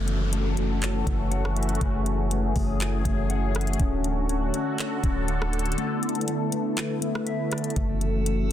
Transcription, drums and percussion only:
0.08 closed hi-hat
0.33 closed hi-hat
0.57 closed hi-hat
0.82 clap, closed hi-hat
1.07 kick, closed hi-hat
1.32 closed hi-hat
1.45 cross-stick
1.56 closed hi-hat
1.63 closed hi-hat
1.69 closed hi-hat
1.75 closed hi-hat
1.81 kick, closed hi-hat
2.06 closed hi-hat
2.31 closed hi-hat
2.56 kick, open hi-hat
2.80 clap, closed hi-hat
3.05 kick, closed hi-hat
3.30 closed hi-hat
3.55 cross-stick, closed hi-hat
3.61 closed hi-hat
3.67 closed hi-hat
3.73 closed hi-hat
3.80 kick, closed hi-hat
4.04 closed hi-hat
4.29 closed hi-hat
4.54 closed hi-hat
4.78 clap, closed hi-hat
5.03 kick, closed hi-hat
5.28 closed hi-hat
5.42 cross-stick
5.53 closed hi-hat
5.59 closed hi-hat
5.66 closed hi-hat
5.72 closed hi-hat
5.78 closed hi-hat
6.03 closed hi-hat
6.09 closed hi-hat
6.15 closed hi-hat
6.21 closed hi-hat
6.28 closed hi-hat
6.52 closed hi-hat
6.77 clap, closed hi-hat
7.02 closed hi-hat
7.15 cross-stick
7.27 closed hi-hat
7.52 cross-stick, closed hi-hat
7.58 closed hi-hat
7.64 closed hi-hat
7.70 closed hi-hat
7.76 kick, closed hi-hat
8.01 closed hi-hat
8.26 closed hi-hat

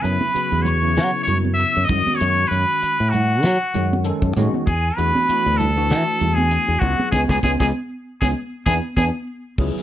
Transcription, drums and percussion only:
0.05 closed hi-hat
0.21 high conga
0.36 closed hi-hat
0.65 closed hi-hat, low conga
0.97 snare, closed hi-hat
1.27 closed hi-hat, low conga
1.45 high conga
1.59 closed hi-hat
1.89 kick, closed hi-hat, low conga
2.07 high conga
2.21 closed hi-hat
2.52 closed hi-hat
2.82 closed hi-hat
3.13 closed hi-hat, low conga
3.43 snare, closed hi-hat
3.74 closed hi-hat, low conga
3.93 high conga
4.04 closed hi-hat
4.22 kick
4.36 snare, closed hi-hat, low conga
4.54 high conga
4.67 kick, closed hi-hat
4.98 closed hi-hat
5.15 high conga
5.29 closed hi-hat
5.60 closed hi-hat, low conga
5.90 snare, closed hi-hat
6.21 closed hi-hat, low conga
6.38 high conga
6.51 closed hi-hat
6.82 kick, closed hi-hat, low conga
7.00 high conga
7.13 kick, snare, high conga
7.29 kick, snare, high conga
7.43 kick, snare, high conga
7.60 kick, snare, high conga
8.22 kick, snare, high conga
8.66 kick, snare, high conga
8.97 kick, snare, high conga
9.58 kick, crash
9.77 snare

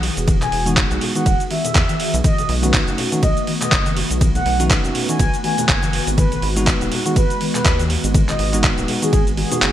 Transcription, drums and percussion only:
0.03 open hi-hat, high bongo
0.17 closed hi-hat, cabasa
0.28 kick, ride, high conga, cabasa
0.42 clap, closed hi-hat, low conga, cabasa
0.52 open hi-hat
0.66 closed hi-hat, high conga, cabasa
0.77 kick, clap, ride, cabasa
0.91 closed hi-hat, cabasa
1.01 open hi-hat, low conga
1.15 closed hi-hat, high conga, cabasa
1.26 kick, ride, cabasa
1.40 closed hi-hat, cabasa
1.51 open hi-hat, high bongo, high conga
1.65 closed hi-hat, low conga, cabasa
1.75 kick, clap, ride, cabasa
1.89 closed hi-hat, high conga, cabasa
2.00 open hi-hat
2.14 closed hi-hat, cabasa
2.24 kick, ride, high conga, cabasa
2.38 closed hi-hat, low conga, cabasa
2.49 open hi-hat
2.63 closed hi-hat, high bongo, high conga, cabasa
2.74 kick, clap, ride, cabasa
2.88 closed hi-hat, cabasa
2.98 open hi-hat, low conga
3.12 closed hi-hat, high conga, cabasa
3.23 kick, ride, cabasa
3.37 closed hi-hat, cabasa
3.47 open hi-hat, high conga
3.61 clap, closed hi-hat, low conga, cabasa
3.72 kick, clap, ride, cabasa
3.86 closed hi-hat, high conga, cabasa
3.97 open hi-hat, high bongo
4.11 closed hi-hat, cabasa
4.21 kick, ride, high conga, cabasa
4.35 closed hi-hat, low conga, cabasa
4.46 open hi-hat
4.60 closed hi-hat, high conga, cabasa
4.70 kick, clap, ride, cabasa
4.84 closed hi-hat, cabasa
4.95 open hi-hat, low conga
5.09 closed hi-hat, high conga, cabasa
5.19 kick, ride, cabasa
5.34 closed hi-hat, cabasa
5.44 open hi-hat, high bongo, high conga
5.58 closed hi-hat, low conga, cabasa
5.69 kick, clap, ride, cabasa
5.83 closed hi-hat, high conga, cabasa
5.93 open hi-hat
6.07 closed hi-hat, cabasa
6.18 kick, ride, high conga, cabasa
6.32 closed hi-hat, low conga, cabasa
6.42 open hi-hat
6.56 closed hi-hat, high bongo, high conga, cabasa
6.67 kick, clap, ride, cabasa
6.81 closed hi-hat, cabasa
6.92 open hi-hat, low conga
7.06 closed hi-hat, high conga, cabasa
7.16 kick, ride, cabasa
7.30 closed hi-hat, cabasa
7.41 open hi-hat, high conga
7.55 clap, closed hi-hat, low conga, cabasa
7.65 kick, clap, ride, cabasa
7.79 closed hi-hat, high conga, cabasa
7.90 open hi-hat, high bongo
8.04 closed hi-hat, cabasa
8.14 kick, ride, high conga, cabasa
8.29 clap, closed hi-hat, low conga, cabasa
8.39 open hi-hat
8.53 closed hi-hat, high bongo, high conga, cabasa
8.64 kick, clap, ride, cabasa
8.78 closed hi-hat, cabasa
8.88 open hi-hat, low conga
9.02 closed hi-hat, high conga, cabasa
9.13 kick, ride, cabasa
9.27 closed hi-hat, cabasa
9.37 open hi-hat, high bongo, high conga
9.52 closed hi-hat, low conga, cabasa
9.62 clap, ride, cabasa

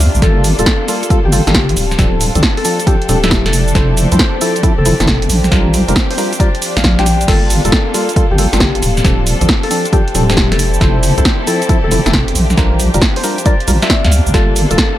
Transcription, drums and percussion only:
0.00 open hi-hat, shaker
0.15 shaker
0.22 kick, snare, closed hi-hat, shaker
0.44 open hi-hat, shaker
0.59 closed hi-hat, shaker
0.66 kick, snare, shaker
0.88 open hi-hat, shaker
1.03 closed hi-hat, shaker
1.10 kick, closed hi-hat, shaker
1.33 open hi-hat, shaker
1.47 snare, closed hi-hat, shaker
1.54 kick, snare, shaker
1.69 closed hi-hat
1.77 open hi-hat, shaker
1.91 snare, shaker
1.99 kick, snare, closed hi-hat, shaker
2.21 open hi-hat, shaker
2.35 closed hi-hat, shaker
2.43 kick, snare, shaker
2.57 open hi-hat
2.65 open hi-hat, shaker
2.80 closed hi-hat, shaker
2.87 kick, closed hi-hat, shaker
3.02 closed hi-hat
3.09 open hi-hat, shaker
3.24 snare, closed hi-hat, shaker
3.31 kick, snare, shaker
3.46 snare, closed hi-hat
3.53 open hi-hat, shaker
3.68 shaker
3.75 kick, snare, closed hi-hat, shaker
3.97 open hi-hat, shaker
4.12 closed hi-hat, shaker
4.19 kick, snare, shaker
4.41 open hi-hat, shaker
4.56 closed hi-hat, shaker
4.63 kick, closed hi-hat, shaker
4.86 open hi-hat, shaker
5.00 snare, closed hi-hat, shaker
5.07 kick, snare, shaker
5.22 closed hi-hat
5.30 open hi-hat, shaker
5.44 snare, shaker
5.52 kick, snare, closed hi-hat, shaker
5.74 open hi-hat, shaker
5.89 closed hi-hat, shaker
5.96 kick, snare, shaker
6.11 open hi-hat
6.18 open hi-hat, shaker
6.33 closed hi-hat, shaker
6.40 kick, closed hi-hat, shaker
6.55 closed hi-hat
6.62 open hi-hat, shaker
6.77 snare, closed hi-hat, shaker
6.84 kick, snare, shaker
6.99 snare, closed hi-hat
7.06 open hi-hat, shaker
7.21 closed hi-hat, shaker
7.28 kick, snare, closed hi-hat, crash, shaker
7.50 open hi-hat, shaker
7.65 closed hi-hat, shaker
7.72 kick, snare, shaker
7.94 open hi-hat, shaker
8.09 closed hi-hat, shaker
8.16 kick, closed hi-hat, shaker
8.38 open hi-hat, shaker
8.53 snare, closed hi-hat, shaker
8.60 kick, snare, shaker
8.75 closed hi-hat
8.83 open hi-hat, shaker
8.97 snare, shaker
9.04 kick, snare, closed hi-hat, shaker
9.27 open hi-hat, shaker
9.41 closed hi-hat, shaker
9.49 kick, snare, shaker
9.63 open hi-hat
9.71 open hi-hat, shaker
9.86 closed hi-hat, shaker
9.93 kick, closed hi-hat, shaker
10.08 closed hi-hat
10.15 open hi-hat, shaker
10.30 snare, closed hi-hat, shaker
10.37 kick, snare, shaker
10.52 snare, closed hi-hat
10.59 open hi-hat, shaker
10.74 shaker
10.81 kick, snare, closed hi-hat, shaker
11.03 open hi-hat, shaker
11.18 closed hi-hat, shaker
11.25 kick, snare, shaker
11.47 open hi-hat, shaker
11.62 closed hi-hat, shaker
11.69 kick, closed hi-hat, shaker
11.91 open hi-hat, shaker
12.06 snare, closed hi-hat, shaker
12.13 kick, snare, shaker
12.28 closed hi-hat
12.35 open hi-hat, shaker
12.50 snare, shaker
12.57 kick, snare, closed hi-hat, shaker
12.80 open hi-hat, shaker
12.94 closed hi-hat, shaker
13.02 kick, snare, shaker
13.16 open hi-hat
13.24 open hi-hat, shaker
13.38 closed hi-hat, shaker
13.46 kick, closed hi-hat, shaker
13.60 closed hi-hat
13.68 open hi-hat, shaker
13.82 snare, closed hi-hat, shaker
13.90 kick, snare, shaker
14.04 snare, closed hi-hat
14.12 open hi-hat, shaker
14.27 shaker
14.34 kick, snare, closed hi-hat, shaker
14.56 open hi-hat, shaker
14.71 closed hi-hat, shaker
14.78 kick, snare, shaker

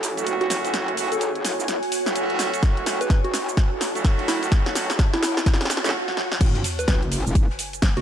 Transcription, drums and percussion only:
0.03 open hi-hat, shaker
0.17 closed hi-hat, shaker
0.27 closed hi-hat, shaker
0.41 closed hi-hat
0.50 snare, open hi-hat, shaker
0.65 closed hi-hat, shaker
0.74 snare, closed hi-hat, shaker
0.88 closed hi-hat
0.97 open hi-hat, shaker
1.12 closed hi-hat, shaker
1.21 closed hi-hat, shaker
1.35 closed hi-hat
1.45 snare, open hi-hat, shaker
1.60 shaker
1.68 snare, closed hi-hat, shaker
1.83 open hi-hat
1.92 open hi-hat, shaker
2.06 snare, closed hi-hat, shaker
2.16 closed hi-hat, shaker
2.30 closed hi-hat
2.39 snare, open hi-hat, shaker
2.54 closed hi-hat, shaker
2.63 kick, snare, closed hi-hat, shaker
2.77 closed hi-hat
2.86 snare, open hi-hat, shaker
3.01 closed hi-hat, shaker
3.10 kick, snare, closed hi-hat, shaker
3.24 closed hi-hat
3.34 snare, open hi-hat, shaker
3.49 shaker
3.57 kick, snare, closed hi-hat, shaker
3.81 snare, open hi-hat, shaker
3.95 closed hi-hat, shaker
4.05 kick, snare, closed hi-hat, shaker
4.19 closed hi-hat
4.28 snare, open hi-hat, shaker
4.43 closed hi-hat, shaker
4.52 kick, snare, closed hi-hat, shaker
4.66 snare, closed hi-hat
4.75 snare, open hi-hat, shaker
4.90 snare, closed hi-hat, shaker
4.99 kick, snare, closed hi-hat, shaker
5.13 snare, closed hi-hat
5.23 snare, open hi-hat, shaker
5.37 snare, shaker
5.46 kick, snare, closed hi-hat, shaker
5.54 snare
5.61 snare, open hi-hat
5.65 snare
5.70 snare, open hi-hat, shaker
5.77 snare
5.84 snare, closed hi-hat, shaker
5.89 snare
6.08 snare
6.17 snare
6.32 snare
6.41 kick, closed hi-hat, crash, ride, shaker
6.55 snare, closed hi-hat
6.64 snare, closed hi-hat, open hi-hat, shaker
6.79 closed hi-hat, shaker
6.87 kick, snare, closed hi-hat, ride, shaker
7.02 closed hi-hat
7.12 open hi-hat, shaker
7.27 shaker
7.35 kick, closed hi-hat, ride, shaker
7.50 snare
7.59 closed hi-hat, open hi-hat, shaker
7.73 closed hi-hat, shaker
7.82 kick, snare, closed hi-hat, ride, shaker
7.96 snare, closed hi-hat

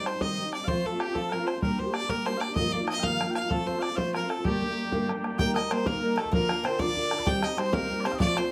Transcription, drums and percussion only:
0.06 bodhran
0.21 bodhran
0.53 bodhran
0.67 bodhran
0.85 bodhran
1.00 bodhran
1.15 bodhran
1.32 bodhran
1.48 bodhran
1.62 bodhran
1.79 bodhran
1.94 bodhran
2.09 bodhran
2.26 bodhran
2.41 bodhran
2.56 bodhran
2.73 bodhran
2.88 bodhran
3.03 bodhran
3.21 bodhran
3.35 bodhran
3.50 bodhran
3.68 bodhran
3.83 bodhran
3.98 bodhran
4.15 bodhran
4.30 bodhran
4.45 bodhran
4.62 bodhran
4.92 bodhran
5.09 bodhran
5.24 bodhran
5.39 bodhran
5.56 bodhran
5.71 bodhran
5.86 bodhran
5.95 bodhran
6.18 bodhran
6.25 bodhran
6.33 bodhran
6.49 bodhran
6.65 bodhran
6.79 bodhran
6.88 bodhran
6.97 bodhran
7.11 bodhran
7.19 bodhran
7.27 bodhran
7.43 bodhran
7.58 bodhran
7.73 bodhran
7.82 bodhran
7.90 bodhran
8.05 bodhran
8.13 bodhran
8.20 bodhran
8.37 bodhran

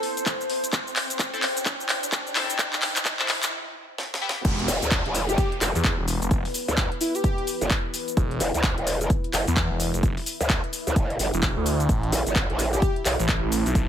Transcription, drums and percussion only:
0.03 open hi-hat
0.17 closed hi-hat, shaker
0.26 kick, clap, closed hi-hat, shaker
0.41 shaker
0.50 open hi-hat
0.64 closed hi-hat, shaker
0.73 kick, clap, closed hi-hat, shaker
0.87 shaker
0.96 clap, open hi-hat
1.10 closed hi-hat, shaker
1.19 kick, clap, closed hi-hat, shaker
1.34 shaker
1.43 clap, open hi-hat
1.57 closed hi-hat, shaker
1.66 kick, clap, closed hi-hat, shaker
1.80 shaker
1.89 clap, open hi-hat
2.03 closed hi-hat, shaker
2.12 kick, clap, closed hi-hat, shaker
2.27 shaker
2.36 clap, open hi-hat
2.50 closed hi-hat, shaker
2.59 kick, clap, closed hi-hat, shaker
2.73 clap, shaker
2.82 clap, open hi-hat
2.96 clap, closed hi-hat, shaker
3.05 kick, clap, closed hi-hat, shaker
3.19 clap, shaker
3.29 clap, open hi-hat
3.43 clap, closed hi-hat, shaker
3.98 snare
4.14 snare
4.29 snare
4.45 kick, closed hi-hat, crash, shaker
4.59 closed hi-hat
4.68 open hi-hat, shaker
4.82 closed hi-hat, shaker
4.91 kick, clap, closed hi-hat, shaker
5.06 closed hi-hat
5.15 open hi-hat, shaker
5.29 closed hi-hat, shaker
5.38 kick, closed hi-hat, shaker
5.52 closed hi-hat
5.61 clap, open hi-hat, shaker
5.75 closed hi-hat, shaker
5.84 kick, clap, closed hi-hat, shaker
6.08 open hi-hat, shaker
6.22 closed hi-hat, shaker
6.31 kick, closed hi-hat, shaker
6.45 open hi-hat
6.54 open hi-hat, shaker
6.68 closed hi-hat, shaker
6.77 kick, clap, closed hi-hat, shaker
6.92 closed hi-hat
7.01 open hi-hat, shaker
7.15 closed hi-hat, shaker
7.24 kick, closed hi-hat, shaker
7.38 closed hi-hat
7.47 open hi-hat, shaker
7.61 closed hi-hat, shaker
7.70 kick, clap, closed hi-hat, shaker
7.94 open hi-hat, shaker
8.08 closed hi-hat, shaker
8.17 kick, closed hi-hat, shaker
8.31 closed hi-hat
8.40 open hi-hat, shaker
8.54 closed hi-hat, shaker
8.63 kick, clap, closed hi-hat, shaker
8.78 closed hi-hat
8.87 open hi-hat, shaker
9.01 closed hi-hat, shaker
9.10 kick, closed hi-hat, shaker
9.24 closed hi-hat
9.33 clap, open hi-hat, shaker
9.48 closed hi-hat, shaker
9.57 kick, clap, closed hi-hat, shaker
9.80 open hi-hat, shaker
9.94 closed hi-hat, shaker
10.03 kick, closed hi-hat, shaker
10.17 open hi-hat
10.26 open hi-hat, shaker
10.41 closed hi-hat, shaker
10.50 kick, clap, closed hi-hat, shaker
10.64 closed hi-hat
10.73 open hi-hat, shaker
10.87 closed hi-hat, shaker
10.96 kick, closed hi-hat, shaker
11.10 closed hi-hat
11.19 open hi-hat, shaker
11.34 closed hi-hat, shaker
11.43 kick, clap, closed hi-hat, shaker
11.66 open hi-hat, shaker
11.80 closed hi-hat, shaker
11.89 kick, closed hi-hat, shaker
12.03 closed hi-hat
12.12 open hi-hat, shaker
12.27 closed hi-hat, shaker
12.36 kick, clap, closed hi-hat, shaker
12.50 closed hi-hat
12.59 open hi-hat, shaker
12.73 closed hi-hat, shaker
12.82 kick, closed hi-hat, shaker
12.96 closed hi-hat
13.05 clap, open hi-hat, shaker
13.20 closed hi-hat, shaker
13.29 kick, clap, closed hi-hat, shaker
13.52 open hi-hat, shaker
13.66 closed hi-hat, shaker
13.75 kick, closed hi-hat, shaker

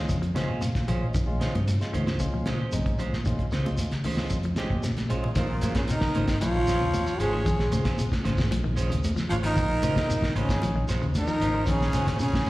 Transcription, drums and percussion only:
0.09 kick, closed hi-hat, shekere
0.23 closed hi-hat
0.36 snare, closed hi-hat, high conga, shekere
0.62 closed hi-hat, high conga, shekere
0.75 kick, snare, closed hi-hat, high conga
0.88 closed hi-hat, low conga, shekere
1.14 kick, closed hi-hat, low conga, shekere
1.29 high conga
1.41 snare, closed hi-hat, shekere
1.55 closed hi-hat, high conga
1.68 closed hi-hat, high conga, low conga, shekere
1.81 snare, closed hi-hat
1.94 closed hi-hat, high conga, low conga, shekere
2.07 snare, closed hi-hat
2.20 kick, closed hi-hat, shekere
2.46 snare, closed hi-hat, high conga, shekere
2.72 closed hi-hat, high conga, shekere
2.86 kick, closed hi-hat
2.98 closed hi-hat, low conga, shekere
3.13 snare, high conga
3.25 kick, closed hi-hat, shekere
3.39 kick, closed hi-hat
3.51 snare, closed hi-hat, shekere
3.66 closed hi-hat, high conga
3.78 closed hi-hat, high conga, low conga, shekere
3.91 snare, closed hi-hat
4.04 open hi-hat, high conga, low conga, shekere
4.17 snare
4.30 kick, closed hi-hat, shekere
4.43 closed hi-hat
4.56 snare, closed hi-hat, high conga, shekere
4.70 kick, high conga
4.83 snare, closed hi-hat, high conga, shekere
4.97 snare, closed hi-hat, high conga
5.09 closed hi-hat, shekere
5.24 low conga
5.35 kick, closed hi-hat, low conga, shekere
5.61 closed hi-hat, high conga, shekere
5.75 kick, snare, closed hi-hat, shekere
5.88 closed hi-hat, shekere
6.01 kick, snare
6.15 closed hi-hat, high conga, shekere
6.28 kick, snare, closed hi-hat, low conga, shekere
6.41 closed hi-hat, high conga, shekere
6.67 snare, closed hi-hat, shekere
6.81 shekere
6.94 closed hi-hat, high conga, low conga, shekere
7.07 shekere
7.20 closed hi-hat, shekere
7.35 high conga
7.46 kick, closed hi-hat, low conga, shekere
7.59 snare, high conga
7.72 closed hi-hat, high conga, shekere
7.85 kick, snare, closed hi-hat, shekere
7.98 closed hi-hat, shekere
8.12 kick, snare, high conga
8.25 snare, closed hi-hat, high conga, shekere
8.37 kick, snare, low conga, shekere
8.52 closed hi-hat, high conga, shekere
8.77 closed hi-hat, shekere
8.91 closed hi-hat, shekere
9.04 closed hi-hat, high conga, low conga, shekere
9.17 snare, shekere
9.30 closed hi-hat, high conga, shekere
9.44 closed hi-hat
9.57 kick, closed hi-hat, low conga, shekere
9.82 closed hi-hat, high conga, shekere
9.96 kick, snare, closed hi-hat, shekere
10.10 closed hi-hat, shekere
10.22 kick, snare
10.36 closed hi-hat, high conga, shekere
10.49 kick, snare, closed hi-hat, shekere
10.62 closed hi-hat, high conga, shekere
10.88 snare, closed hi-hat, shekere
11.02 shekere
11.15 closed hi-hat, high conga, low conga, shekere
11.27 shekere
11.41 closed hi-hat, shekere
11.66 kick, closed hi-hat, low conga, shekere
11.82 snare
11.93 closed hi-hat, high conga, shekere
12.07 kick, snare, closed hi-hat, shekere
12.19 closed hi-hat, shekere
12.33 kick, snare, high conga
12.46 high conga, shekere

